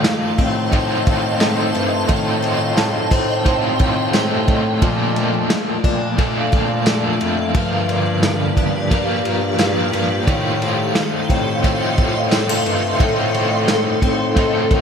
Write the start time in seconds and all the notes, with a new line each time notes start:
Already playing: A3 D#4 F4 C5 D#5 F5 A5 C6
0.04 D#3, snare, ride, tambourine
0.38 A2 C4, kick, ride
0.72 A3 D#4 F4 C5, kick, ride
1.07 A2 D#3, kick, ride
1.40 A3 D#4 F4 C5, snare, ride, tambourine
1.75 G2 D#3, ride
2.09 A2 D#3 A3 D#4 F4 C5 G5, kick, ride
2.42 A3 F4 C5, ride
2.46 D#4
2.77 D#3, snare, ride, tambourine
3.11 A2 C4, kick, ride
3.44 A3 D#4 F4 C5, kick, ride
3.79 A2 D#3, kick, ride
4.13 A2 A3 D#4 F4 C5, snare, ride, tambourine
4.48 A2 D#3, kick, ride
4.81 A#2 D3 F3 A#3 D4 A4 D5 F5, kick, ride
5.15 A3 A#3 D4 A4, ride
5.19 F3
5.50 F3, snare, ride, tambourine
5.84 A#2 D4, kick, ride
6.17 F3 A3 A#3 D4 A4, kick, ride
6.52 A#2 F3, kick, ride
6.86 F3 A3 A#3 D4 A4, snare, ride, tambourine
7.21 F2 F3, ride
7.53 G2 D3 F3 A#3 G4, kick, ride
7.58 D4 A#4
7.89 A#3, ride
8.23 F3, snare, ride, tambourine
8.57 G2 D4, kick, ride
8.90 F3 A#3 D4, kick, ride
8.94 A#4
9.25 G2 F3, ride
9.58 G2 F3 A#3 D4, snare, ride, tambourine
9.62 A#4
9.93 G2 F3, ride
10.27 A2 D#3 A3 D#4 F4 A4 C5 D#5 C6, kick, ride
10.61 A3 F4 C5, ride
10.65 D#4
10.95 D#3, snare, ride, tambourine
11.30 A2 C4, kick, ride
11.63 A3 D#4 F4 C5, kick, ride
11.98 A2 D#3, kick, ride
12.30 G3 A3 D#4 F4 C5, snare, ride, tambourine
12.49 A3
12.66 G2 D#3, ride
12.99 A2 D#3 A3 D#4 F4 C5, kick, ride
13.33 A3 D#4 F4 C5, ride
13.68 D#3, snare, ride, tambourine
14.02 A2 C4, kick, ride
14.35 A3 D#4 F4 C5, kick, ride
14.71 A2 D#3, kick, ride